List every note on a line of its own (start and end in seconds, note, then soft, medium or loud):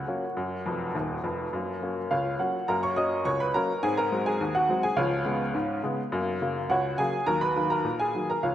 0.00 1.20 F#4 soft
0.00 1.23 F#5 medium
0.07 0.23 F#3 soft
0.07 0.24 A#3 soft
0.07 0.24 C#4 soft
0.37 0.61 F#2 medium
0.66 0.87 F1 medium
0.66 0.87 F2 medium
0.95 1.17 D#1 medium
0.95 1.16 D#2 medium
1.24 1.45 F1 medium
1.24 1.45 F2 medium
1.53 1.77 F#2 medium
1.53 1.70 A#3 soft
1.82 1.98 F#3 soft
1.82 1.98 A#3 soft
1.82 1.98 C#4 soft
2.11 2.35 C#2 medium
2.11 2.38 F4 medium
2.11 2.38 C#5 medium
2.11 2.39 F5 medium
2.39 2.55 F#3 soft
2.39 2.55 A#3 soft
2.39 2.56 C#4 soft
2.39 2.67 F#4 soft
2.39 2.68 F#5 medium
2.68 2.93 F#2 medium
2.68 2.85 A#3 soft
2.68 2.82 A#4 medium
2.68 2.82 A#5 medium
2.83 2.97 C#5 medium
2.83 2.97 C#6 medium
2.96 3.12 F#3 soft
2.96 3.13 A#3 soft
2.96 3.13 C#4 soft
2.96 3.24 D#5 medium
2.96 3.25 D#6 medium
3.25 3.50 C#2 medium
3.25 3.39 C#5 medium
3.25 3.40 C#6 medium
3.40 3.54 B4 medium
3.40 3.54 B5 medium
3.54 3.70 F#3 soft
3.54 3.71 A#3 soft
3.54 3.71 C#4 medium
3.54 3.82 A#4 medium
3.54 3.83 A#5 medium
3.83 4.07 G#2 medium
3.83 4.00 C4 soft
3.83 3.97 G#4 medium
3.83 3.97 G#5 medium
3.97 4.24 A#4 medium
3.97 4.26 A#5 medium
4.12 4.27 F#3 soft
4.12 4.28 G#3 soft
4.12 4.28 C4 soft
4.26 4.53 G#4 medium
4.26 4.55 G#5 medium
4.41 4.65 D#2 medium
4.55 4.82 F#4 medium
4.55 4.83 F#5 medium
4.69 4.85 F#3 soft
4.69 4.85 G#3 soft
4.69 4.85 C4 soft
4.83 4.97 G#4 medium
4.83 4.97 G#5 medium
4.96 5.21 C#2 medium
4.96 5.14 F3 medium
4.96 5.79 F4 medium
4.96 5.79 C#5 medium
4.96 5.83 F5 medium
5.25 5.41 C#3 soft
5.25 5.41 G#3 soft
5.25 5.42 B3 soft
5.54 5.79 G#2 medium
5.83 5.99 C#3 soft
5.83 5.99 G#3 medium
5.83 6.00 B3 soft
6.12 6.37 F#2 medium
6.12 6.29 A#3 medium
6.41 6.57 C#3 soft
6.41 6.57 F#3 soft
6.41 6.57 A#3 medium
6.70 6.94 C#2 medium
6.70 6.97 F#4 medium
6.70 6.97 C#5 medium
6.70 6.98 F#5 medium
6.98 7.14 C#3 soft
6.98 7.15 F#3 soft
6.98 7.15 A#3 medium
6.98 7.26 G#4 medium
6.98 7.27 G#5 medium
7.26 7.51 D#2 medium
7.26 7.44 F#3 soft
7.26 7.41 A#4 medium
7.26 7.41 A#5 medium
7.41 7.69 B4 medium
7.41 7.70 B5 medium
7.56 7.72 D#3 soft
7.56 7.72 F#3 soft
7.56 7.72 A#3 soft
7.70 7.98 A#4 medium
7.70 7.99 A#5 medium
7.85 8.09 A#2 medium
8.00 8.27 G#4 medium
8.00 8.28 G#5 medium
8.15 8.30 D#3 soft
8.15 8.31 F#3 soft
8.15 8.31 A#3 soft
8.30 8.43 A#4 soft
8.30 8.44 A#5 medium
8.43 8.55 C#2 medium
8.43 8.55 F3 soft
8.43 8.55 F4 soft
8.43 8.55 C#5 soft
8.43 8.55 F5 medium